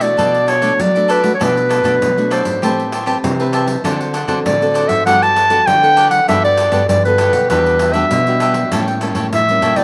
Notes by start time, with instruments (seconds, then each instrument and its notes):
Already playing: nylon-string guitar B2 E3
0.00 nylon-string guitar A3 D4 F#4, cavaquinho A4 C#5 E5, clarinet D5, pandeiro
0.17 nylon-string guitar B2, cavaquinho D4 A4 B4 D5, pandeiro
0.34 pandeiro
0.47 cavaquinho D4 A4 B4 D5, clarinet C#5, pandeiro
0.61 nylon-string guitar A3 D4 F#4, cavaquinho D4 A4 B4 D5, pandeiro
0.79 nylon-string guitar F#3, clarinet D5, pandeiro
0.95 nylon-string guitar A3 D4 F#4, cavaquinho A4 B4 D5, pandeiro
1.08 cavaquinho D4 A4 B4 D5, clarinet B4, pandeiro
1.22 nylon-string guitar A3 D4 F#4, cavaquinho A4 B4 D5, pandeiro
1.34 clarinet C#5
1.40 nylon-string guitar B2 A3 D4 F#4, cavaquinho D4 A4 B4 D5, clarinet B4, pandeiro
1.56 cavaquinho A4 B4 D5, pandeiro
1.69 cavaquinho D4 A4 B4 D5, pandeiro
1.83 nylon-string guitar B2 A3 D4 F#4, cavaquinho D4 A4 B4 D5, pandeiro
2.02 nylon-string guitar B2 F#3, pandeiro
2.18 nylon-string guitar A3 D4 F#4, pandeiro
2.30 cavaquinho D4 A4 B4 D5, clarinet C5, pandeiro
2.44 nylon-string guitar G#2, cavaquinho A4 B4 D5, pandeiro
2.62 nylon-string guitar A2 A3 C4 G4 B4, cavaquinho G4 C5 E5 A5, pandeiro
2.80 pandeiro
2.92 cavaquinho G4 C5 E5 A5, pandeiro
3.06 nylon-string guitar C4 G4 B4, cavaquinho G4 C5 E5 A5, pandeiro
3.23 nylon-string guitar C3 E3, pandeiro
3.40 nylon-string guitar C4 G4 B4, cavaquinho C5 E5 A5, pandeiro
3.52 cavaquinho G4 C5 E5 A5, pandeiro
3.66 cavaquinho C5 E5 A5, pandeiro
3.84 nylon-string guitar D3 C4 F#4 A4, cavaquinho D4 C5 D5 F#5, pandeiro
4.00 cavaquinho C5 D5 F#5, pandeiro
4.13 cavaquinho D4 C5 D5 F#5, pandeiro
4.28 nylon-string guitar D3 C4 F#4 A4, cavaquinho D4 C5 D5 F#5, pandeiro
4.45 nylon-string guitar A2 D3, clarinet D5, pandeiro
4.61 nylon-string guitar C4 F#4 A4, pandeiro
4.74 cavaquinho D4 C5 D5 F#5, pandeiro
4.88 nylon-string guitar G#2, cavaquinho C5 D5 F#5, clarinet E5, pandeiro
5.06 nylon-string guitar G2 G3 B3 F#4 A4, cavaquinho D4 G4 B4 F#5, clarinet F#5, pandeiro
5.23 clarinet A5, pandeiro
5.35 cavaquinho D4 G4 B4 F#5, pandeiro
5.49 nylon-string guitar B3 F#4 A4, cavaquinho D4 G4 B4 F#5, pandeiro
5.67 nylon-string guitar D3, clarinet G5, pandeiro
5.83 nylon-string guitar B3 A4, cavaquinho G4 B4 F#5, pandeiro
5.96 cavaquinho D4 G4 B4 F#5, pandeiro
6.10 cavaquinho G4 B4 F#5, clarinet F#5, pandeiro
6.28 nylon-string guitar G2 G3 B3 F#4 A4, cavaquinho D4 G4 B4 F#5, clarinet E5, pandeiro
6.44 cavaquinho G4 B4 F#5, clarinet D5, pandeiro
6.57 cavaquinho D4 G4 B4 F#5, pandeiro
6.71 nylon-string guitar G2 B3 F#4 A4, cavaquinho D4 G4 B4 F#5, pandeiro
6.89 nylon-string guitar G2 D3, clarinet D5, pandeiro
7.05 nylon-string guitar B3 F#4 A4, clarinet B4, pandeiro
7.18 cavaquinho D4 G4 B4 F#5, pandeiro
7.33 nylon-string guitar B2, cavaquinho G4 B4 F#5, pandeiro
7.50 nylon-string guitar E2 E3 G3 D4 F#4, cavaquinho D4 G4 B4 E5, clarinet B4, pandeiro
7.66 pandeiro
7.79 cavaquinho D4 G4 B4 E5, pandeiro
7.93 nylon-string guitar G3 D4 F#4, cavaquinho D4 G4 B4 E5, clarinet E5, pandeiro
8.11 nylon-string guitar B2, pandeiro
8.27 nylon-string guitar G3 D4 F#4, cavaquinho G4 B4 E5, pandeiro
8.40 cavaquinho D4 G4 B4 E5, pandeiro
8.54 cavaquinho G4 B4 E5, pandeiro
8.72 nylon-string guitar A2 G3 A#3 C#4, cavaquinho E4 A4 C#5 G5, pandeiro
8.87 cavaquinho A4 C#5 G5, pandeiro
9.01 nylon-string guitar G3 A#3 C#4, cavaquinho E4 A4 C#5 G5, pandeiro
9.15 nylon-string guitar A2, cavaquinho E4 A4 C#5 G5, pandeiro
9.33 nylon-string guitar A2 E3, clarinet E5, pandeiro
9.49 nylon-string guitar G3 A#3 C#4, pandeiro
9.62 nylon-string guitar A#2, cavaquinho E4 A4 C#5 G5, pandeiro
9.76 nylon-string guitar C#3 B3 E4 F#4, cavaquinho A4 C#5 G5, clarinet D5, pandeiro